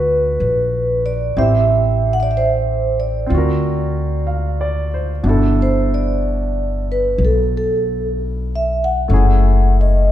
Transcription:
Already playing: D2 D4 E4 F#4 A4 B4
0.40 A#1
1.06 D5
1.37 A1 C4 E4 G4 C5 E5
2.13 F#5
2.20 D5 E5
2.31 E5
2.37 C5
3.00 D5
3.26 D2 C4 F4
3.34 F#4 A#4
4.27 F5
4.61 D5
4.94 C5
5.23 G1 B2 D4 E4
5.29 A4
5.62 C5
5.94 D5
6.92 B4
7.18 B1
7.25 A4
7.57 A4
8.56 E5
8.84 F#5
9.08 F#1 A3 C#4 E4
9.13 G#4
9.81 D#5

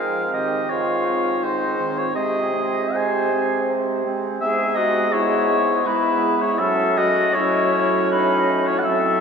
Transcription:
Already playing: G#2 G#4 F5
0.31 D#3 C4 G4 D#5
0.69 G#2 F4 C#5
1.08 D#3 C4
1.43 G#2 D#4 C5
1.78 D#3 C4
1.98 F4 C#5
2.14 C3 G#3 C4 G#4 D#5
2.53 G#3 C4
2.95 C3 C5 G#5
3.33 G#3 C4
3.70 C3
4.05 G#3 C4
4.41 G#2 G#3 B3 G#4 E5
4.75 F#4 D#5
5.11 E4 C#5
5.85 G#3 B3 E4 B4
6.39 E4 C#5
6.58 A2 F#3 C#4 A4 E5
6.97 F#4 D#5
7.33 F#3 C#4 E4 C#5
8.11 D#4 B4
8.66 E4 C#5
8.79 F#5
8.83 F#3 C4 A4 E5

